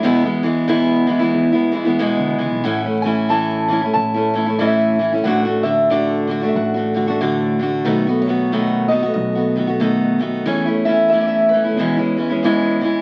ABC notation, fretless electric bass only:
X:1
M:4/4
L:1/16
Q:"Swing" 1/4=92
K:A
V:1 name="Fretless electric bass" clef=bass
E,,8 E,,4- E,, D,, C,, B,,, | A,,,8 A,,,8 | A,,,8 A,,,8 | B,,,8 B,,,8 |
E,,8 E,,8 |]